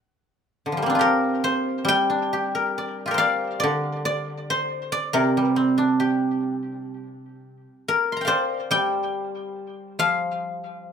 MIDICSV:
0, 0, Header, 1, 2, 480
1, 0, Start_track
1, 0, Tempo, 900901
1, 35, Time_signature, 4, 2, 24, 8
1, 1475, Tempo, 870827
1, 2435, Tempo, 840336
1, 4355, Tempo, 854701
1, 6070, End_track
2, 0, Start_track
2, 0, Title_t, "Guzheng"
2, 0, Program_c, 0, 107
2, 351, Note_on_c, 0, 50, 34
2, 385, Note_on_c, 0, 53, 33
2, 411, Note_on_c, 0, 55, 36
2, 439, Note_on_c, 0, 58, 42
2, 459, Note_on_c, 0, 60, 42
2, 478, Note_on_c, 0, 62, 45
2, 491, Note_off_c, 0, 50, 0
2, 505, Note_on_c, 0, 65, 47
2, 528, Note_on_c, 0, 67, 49
2, 537, Note_off_c, 0, 55, 0
2, 537, Note_on_c, 0, 70, 76
2, 560, Note_off_c, 0, 53, 0
2, 766, Note_on_c, 0, 72, 72
2, 983, Note_on_c, 0, 55, 59
2, 1004, Note_on_c, 0, 79, 97
2, 1115, Note_off_c, 0, 62, 0
2, 1117, Note_on_c, 0, 62, 39
2, 1239, Note_off_c, 0, 67, 0
2, 1241, Note_on_c, 0, 67, 40
2, 1356, Note_off_c, 0, 70, 0
2, 1358, Note_on_c, 0, 70, 46
2, 1481, Note_on_c, 0, 74, 42
2, 1632, Note_off_c, 0, 65, 0
2, 1634, Note_on_c, 0, 65, 35
2, 1637, Note_off_c, 0, 67, 0
2, 1644, Note_on_c, 0, 67, 44
2, 1656, Note_off_c, 0, 70, 0
2, 1663, Note_on_c, 0, 70, 49
2, 1678, Note_off_c, 0, 72, 0
2, 1680, Note_on_c, 0, 72, 53
2, 1701, Note_off_c, 0, 74, 0
2, 1701, Note_on_c, 0, 77, 78
2, 1708, Note_on_c, 0, 74, 58
2, 1844, Note_off_c, 0, 79, 0
2, 1930, Note_off_c, 0, 74, 0
2, 1932, Note_on_c, 0, 74, 81
2, 1952, Note_on_c, 0, 50, 56
2, 2077, Note_off_c, 0, 62, 0
2, 2079, Note_off_c, 0, 60, 0
2, 2179, Note_off_c, 0, 58, 0
2, 2180, Note_off_c, 0, 74, 0
2, 2183, Note_on_c, 0, 74, 74
2, 2426, Note_off_c, 0, 55, 0
2, 2428, Note_off_c, 0, 72, 0
2, 2430, Note_on_c, 0, 72, 82
2, 2626, Note_off_c, 0, 77, 0
2, 2667, Note_off_c, 0, 74, 0
2, 2670, Note_on_c, 0, 74, 78
2, 2788, Note_off_c, 0, 72, 0
2, 2790, Note_off_c, 0, 70, 0
2, 2790, Note_on_c, 0, 70, 76
2, 2793, Note_on_c, 0, 48, 60
2, 2927, Note_on_c, 0, 55, 45
2, 2939, Note_off_c, 0, 70, 0
2, 2939, Note_on_c, 0, 71, 76
2, 2959, Note_off_c, 0, 67, 0
2, 3030, Note_off_c, 0, 71, 0
2, 3030, Note_on_c, 0, 72, 76
2, 3036, Note_on_c, 0, 60, 45
2, 3048, Note_off_c, 0, 65, 0
2, 3159, Note_on_c, 0, 62, 43
2, 3285, Note_on_c, 0, 67, 45
2, 3391, Note_off_c, 0, 50, 0
2, 3724, Note_off_c, 0, 74, 0
2, 3878, Note_off_c, 0, 55, 0
2, 3922, Note_off_c, 0, 72, 0
2, 3993, Note_off_c, 0, 60, 0
2, 4115, Note_off_c, 0, 62, 0
2, 4232, Note_off_c, 0, 48, 0
2, 4239, Note_off_c, 0, 67, 0
2, 4362, Note_on_c, 0, 70, 73
2, 4496, Note_on_c, 0, 84, 39
2, 4521, Note_on_c, 0, 82, 43
2, 4545, Note_on_c, 0, 79, 46
2, 4566, Note_on_c, 0, 77, 53
2, 4578, Note_on_c, 0, 74, 55
2, 4582, Note_on_c, 0, 72, 84
2, 4824, Note_on_c, 0, 55, 61
2, 4826, Note_off_c, 0, 79, 0
2, 4828, Note_on_c, 0, 79, 88
2, 5229, Note_off_c, 0, 84, 0
2, 5308, Note_off_c, 0, 82, 0
2, 5502, Note_off_c, 0, 77, 0
2, 5544, Note_on_c, 0, 53, 54
2, 5547, Note_on_c, 0, 77, 85
2, 5556, Note_off_c, 0, 70, 0
2, 5614, Note_off_c, 0, 74, 0
2, 5694, Note_off_c, 0, 72, 0
2, 5700, Note_off_c, 0, 79, 0
2, 6070, Note_off_c, 0, 53, 0
2, 6070, Note_off_c, 0, 55, 0
2, 6070, Note_off_c, 0, 77, 0
2, 6070, End_track
0, 0, End_of_file